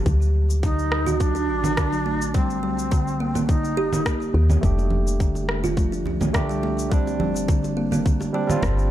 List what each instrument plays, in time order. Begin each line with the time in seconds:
0.06 fm bass D2, kalimba F#3, kick, cabasa
0.22 cabasa
0.50 cabasa
0.63 kalimba D3, native american-style wooden flute D#4, kick, cabasa
0.79 cabasa
0.92 cross-stick
1.06 kalimba F#4, low conga, cabasa
1.20 kalimba F#3, native american-style wooden flute D4, kick, cabasa
1.35 kalimba D4, cabasa
1.49 fm bass A1
1.64 low conga, cabasa
1.77 kalimba D3, kick, cross-stick, cabasa
1.92 kalimba F#3, cabasa
2.06 kalimba A3
2.22 cabasa
2.34 kalimba G3, native american-style wooden flute C4, kick, cabasa
2.50 cabasa
2.63 fm bass C2, kalimba G3
2.79 cabasa
2.91 kalimba D3, kick, cabasa
3.08 cabasa
3.20 kalimba A#3
3.35 kalimba A#3, low conga, cabasa
3.48 kalimba D3, native american-style wooden flute D#4, kick, cabasa
3.65 cabasa
3.77 fm bass G1, kalimba G4
3.93 low conga, cabasa
4.06 kalimba A#3, kick, cross-stick, cabasa
4.22 cabasa
4.34 fm bass D#2, kalimba A#3
4.50 low conga, cabasa
4.61 fm bass F1, kalimba G3, tine electric piano A3 D4 G4, kick, cabasa
4.79 high bongo, cabasa
4.90 low conga
5.07 cabasa
5.20 kalimba D3, kick, cabasa
5.35 high bongo, cabasa
5.49 cross-stick, high conga
5.64 kalimba F4, low conga, cabasa
5.77 kalimba F3, kick, high conga, cabasa
5.92 kalimba D4, cabasa
6.06 fm bass C2, high bongo, low conga
6.21 high conga, low conga, cabasa
6.33 kalimba D3, tine electric piano A3 D4 G4, kick, cross-stick, high conga, cabasa
6.49 kalimba G3, cabasa
6.63 kalimba A3, high bongo
6.79 cabasa
6.89 tine electric piano G3 C4 D4, kalimba G3, kick, cabasa
7.07 high bongo, cabasa
7.20 fm bass G1, kalimba G3, low conga
7.36 cabasa
7.48 kalimba D3, kick, cabasa
7.64 high bongo, cabasa
7.77 kalimba A#3
7.92 kalimba A#3, low conga, cabasa
8.06 kalimba D3, kick, cabasa
8.21 high bongo, high conga, cabasa
8.33 tine electric piano G3 C4 D4, kalimba G3
8.47 tine electric piano G3 C4 F4, low conga, cabasa
8.63 fm bass G1, kalimba D3, kick, cross-stick, cabasa
8.79 cabasa